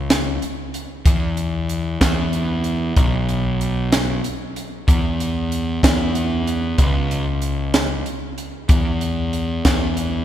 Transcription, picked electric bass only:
0, 0, Header, 1, 2, 480
1, 0, Start_track
1, 0, Tempo, 636943
1, 795, Time_signature, 6, 3, 24, 8
1, 7723, End_track
2, 0, Start_track
2, 0, Title_t, "Picked electric bass"
2, 0, Program_c, 0, 34
2, 0, Note_on_c, 0, 37, 90
2, 283, Note_off_c, 0, 37, 0
2, 796, Note_on_c, 0, 40, 88
2, 1484, Note_off_c, 0, 40, 0
2, 1513, Note_on_c, 0, 40, 95
2, 2202, Note_off_c, 0, 40, 0
2, 2237, Note_on_c, 0, 35, 92
2, 3163, Note_off_c, 0, 35, 0
2, 3678, Note_on_c, 0, 40, 88
2, 4364, Note_off_c, 0, 40, 0
2, 4395, Note_on_c, 0, 40, 87
2, 5082, Note_off_c, 0, 40, 0
2, 5114, Note_on_c, 0, 37, 91
2, 6043, Note_off_c, 0, 37, 0
2, 6549, Note_on_c, 0, 40, 85
2, 7242, Note_off_c, 0, 40, 0
2, 7272, Note_on_c, 0, 40, 92
2, 7723, Note_off_c, 0, 40, 0
2, 7723, End_track
0, 0, End_of_file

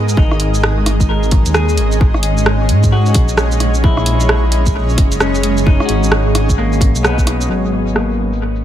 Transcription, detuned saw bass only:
0, 0, Header, 1, 2, 480
1, 0, Start_track
1, 0, Tempo, 458015
1, 181, Time_signature, 4, 2, 24, 8
1, 9059, End_track
2, 0, Start_track
2, 0, Title_t, "Detuned saw bass"
2, 0, Program_c, 0, 39
2, 0, Note_on_c, 0, 44, 86
2, 169, Note_off_c, 0, 44, 0
2, 182, Note_on_c, 0, 32, 99
2, 1130, Note_off_c, 0, 32, 0
2, 1137, Note_on_c, 0, 32, 95
2, 1509, Note_off_c, 0, 32, 0
2, 1532, Note_on_c, 0, 39, 87
2, 1862, Note_on_c, 0, 32, 98
2, 1878, Note_off_c, 0, 39, 0
2, 2829, Note_on_c, 0, 44, 101
2, 2845, Note_off_c, 0, 32, 0
2, 3303, Note_on_c, 0, 34, 99
2, 3319, Note_off_c, 0, 44, 0
2, 5211, Note_off_c, 0, 34, 0
2, 5220, Note_on_c, 0, 30, 106
2, 6071, Note_off_c, 0, 30, 0
2, 6178, Note_on_c, 0, 32, 92
2, 7281, Note_off_c, 0, 32, 0
2, 7287, Note_on_c, 0, 35, 102
2, 7848, Note_off_c, 0, 35, 0
2, 7860, Note_on_c, 0, 32, 80
2, 9059, Note_off_c, 0, 32, 0
2, 9059, End_track
0, 0, End_of_file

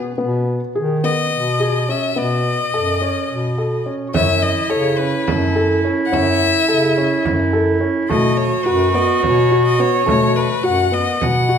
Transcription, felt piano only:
0, 0, Header, 1, 2, 480
1, 0, Start_track
1, 0, Tempo, 564972
1, 158, Time_signature, 7, 3, 24, 8
1, 9840, End_track
2, 0, Start_track
2, 0, Title_t, "Felt piano"
2, 0, Program_c, 0, 0
2, 0, Note_on_c, 0, 59, 64
2, 89, Note_off_c, 0, 59, 0
2, 152, Note_on_c, 0, 59, 76
2, 503, Note_off_c, 0, 59, 0
2, 640, Note_on_c, 0, 68, 69
2, 814, Note_off_c, 0, 68, 0
2, 880, Note_on_c, 0, 59, 66
2, 1229, Note_off_c, 0, 59, 0
2, 1359, Note_on_c, 0, 68, 64
2, 1533, Note_off_c, 0, 68, 0
2, 1603, Note_on_c, 0, 61, 68
2, 1776, Note_off_c, 0, 61, 0
2, 1836, Note_on_c, 0, 59, 75
2, 2187, Note_off_c, 0, 59, 0
2, 2327, Note_on_c, 0, 69, 64
2, 2499, Note_off_c, 0, 69, 0
2, 2560, Note_on_c, 0, 61, 66
2, 2910, Note_off_c, 0, 61, 0
2, 3043, Note_on_c, 0, 69, 56
2, 3217, Note_off_c, 0, 69, 0
2, 3279, Note_on_c, 0, 61, 62
2, 3454, Note_off_c, 0, 61, 0
2, 3517, Note_on_c, 0, 61, 80
2, 3868, Note_off_c, 0, 61, 0
2, 3990, Note_on_c, 0, 69, 71
2, 4169, Note_off_c, 0, 69, 0
2, 4241, Note_on_c, 0, 61, 61
2, 4590, Note_off_c, 0, 61, 0
2, 4720, Note_on_c, 0, 69, 65
2, 4895, Note_off_c, 0, 69, 0
2, 4966, Note_on_c, 0, 61, 70
2, 5139, Note_off_c, 0, 61, 0
2, 5200, Note_on_c, 0, 61, 77
2, 5550, Note_off_c, 0, 61, 0
2, 5679, Note_on_c, 0, 69, 70
2, 5855, Note_off_c, 0, 69, 0
2, 5925, Note_on_c, 0, 61, 69
2, 6273, Note_off_c, 0, 61, 0
2, 6398, Note_on_c, 0, 69, 65
2, 6574, Note_off_c, 0, 69, 0
2, 6632, Note_on_c, 0, 61, 67
2, 6810, Note_off_c, 0, 61, 0
2, 6877, Note_on_c, 0, 57, 77
2, 7228, Note_off_c, 0, 57, 0
2, 7356, Note_on_c, 0, 66, 73
2, 7532, Note_off_c, 0, 66, 0
2, 7599, Note_on_c, 0, 59, 71
2, 7949, Note_off_c, 0, 59, 0
2, 8084, Note_on_c, 0, 66, 67
2, 8257, Note_off_c, 0, 66, 0
2, 8322, Note_on_c, 0, 59, 72
2, 8496, Note_off_c, 0, 59, 0
2, 8550, Note_on_c, 0, 57, 76
2, 8902, Note_off_c, 0, 57, 0
2, 9035, Note_on_c, 0, 66, 67
2, 9211, Note_off_c, 0, 66, 0
2, 9277, Note_on_c, 0, 59, 67
2, 9627, Note_off_c, 0, 59, 0
2, 9761, Note_on_c, 0, 66, 66
2, 9840, Note_off_c, 0, 66, 0
2, 9840, End_track
0, 0, End_of_file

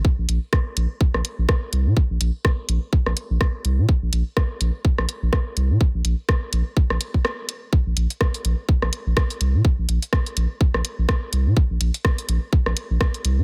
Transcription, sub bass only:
0, 0, Header, 1, 2, 480
1, 0, Start_track
1, 0, Tempo, 480000
1, 47, Time_signature, 4, 2, 24, 8
1, 13437, End_track
2, 0, Start_track
2, 0, Title_t, "Sub bass"
2, 0, Program_c, 0, 38
2, 183, Note_on_c, 0, 34, 97
2, 258, Note_off_c, 0, 34, 0
2, 286, Note_on_c, 0, 34, 93
2, 386, Note_off_c, 0, 34, 0
2, 766, Note_on_c, 0, 34, 95
2, 866, Note_off_c, 0, 34, 0
2, 1143, Note_on_c, 0, 34, 85
2, 1218, Note_off_c, 0, 34, 0
2, 1383, Note_on_c, 0, 34, 93
2, 1458, Note_off_c, 0, 34, 0
2, 1726, Note_on_c, 0, 36, 81
2, 1863, Note_on_c, 0, 46, 100
2, 1878, Note_off_c, 0, 36, 0
2, 1938, Note_off_c, 0, 46, 0
2, 2103, Note_on_c, 0, 34, 102
2, 2178, Note_off_c, 0, 34, 0
2, 2206, Note_on_c, 0, 34, 93
2, 2306, Note_off_c, 0, 34, 0
2, 2686, Note_on_c, 0, 34, 99
2, 2786, Note_off_c, 0, 34, 0
2, 3064, Note_on_c, 0, 34, 86
2, 3138, Note_off_c, 0, 34, 0
2, 3303, Note_on_c, 0, 34, 97
2, 3378, Note_off_c, 0, 34, 0
2, 3646, Note_on_c, 0, 36, 84
2, 3784, Note_on_c, 0, 46, 98
2, 3799, Note_off_c, 0, 36, 0
2, 3858, Note_off_c, 0, 46, 0
2, 4023, Note_on_c, 0, 34, 98
2, 4098, Note_off_c, 0, 34, 0
2, 4127, Note_on_c, 0, 34, 94
2, 4226, Note_off_c, 0, 34, 0
2, 4606, Note_on_c, 0, 34, 98
2, 4706, Note_off_c, 0, 34, 0
2, 4984, Note_on_c, 0, 34, 83
2, 5058, Note_off_c, 0, 34, 0
2, 5224, Note_on_c, 0, 34, 93
2, 5299, Note_off_c, 0, 34, 0
2, 5566, Note_on_c, 0, 36, 85
2, 5703, Note_on_c, 0, 46, 99
2, 5718, Note_off_c, 0, 36, 0
2, 5778, Note_off_c, 0, 46, 0
2, 5944, Note_on_c, 0, 34, 101
2, 6018, Note_off_c, 0, 34, 0
2, 6045, Note_on_c, 0, 34, 94
2, 6146, Note_off_c, 0, 34, 0
2, 6526, Note_on_c, 0, 34, 98
2, 6626, Note_off_c, 0, 34, 0
2, 6903, Note_on_c, 0, 34, 86
2, 6978, Note_off_c, 0, 34, 0
2, 7863, Note_on_c, 0, 34, 97
2, 7938, Note_off_c, 0, 34, 0
2, 7966, Note_on_c, 0, 34, 91
2, 8066, Note_off_c, 0, 34, 0
2, 8446, Note_on_c, 0, 34, 97
2, 8546, Note_off_c, 0, 34, 0
2, 8823, Note_on_c, 0, 34, 84
2, 8898, Note_off_c, 0, 34, 0
2, 9063, Note_on_c, 0, 34, 91
2, 9138, Note_off_c, 0, 34, 0
2, 9406, Note_on_c, 0, 36, 84
2, 9544, Note_on_c, 0, 46, 98
2, 9559, Note_off_c, 0, 36, 0
2, 9619, Note_off_c, 0, 46, 0
2, 9784, Note_on_c, 0, 34, 102
2, 9859, Note_off_c, 0, 34, 0
2, 9887, Note_on_c, 0, 34, 92
2, 9987, Note_off_c, 0, 34, 0
2, 10366, Note_on_c, 0, 34, 95
2, 10466, Note_off_c, 0, 34, 0
2, 10743, Note_on_c, 0, 34, 86
2, 10818, Note_off_c, 0, 34, 0
2, 10984, Note_on_c, 0, 34, 93
2, 11059, Note_off_c, 0, 34, 0
2, 11326, Note_on_c, 0, 36, 83
2, 11463, Note_on_c, 0, 46, 98
2, 11478, Note_off_c, 0, 36, 0
2, 11538, Note_off_c, 0, 46, 0
2, 11703, Note_on_c, 0, 34, 99
2, 11778, Note_off_c, 0, 34, 0
2, 11805, Note_on_c, 0, 34, 95
2, 11906, Note_off_c, 0, 34, 0
2, 12285, Note_on_c, 0, 34, 98
2, 12386, Note_off_c, 0, 34, 0
2, 12663, Note_on_c, 0, 34, 84
2, 12738, Note_off_c, 0, 34, 0
2, 12903, Note_on_c, 0, 34, 92
2, 12978, Note_off_c, 0, 34, 0
2, 13246, Note_on_c, 0, 36, 84
2, 13384, Note_on_c, 0, 46, 96
2, 13399, Note_off_c, 0, 36, 0
2, 13437, Note_off_c, 0, 46, 0
2, 13437, End_track
0, 0, End_of_file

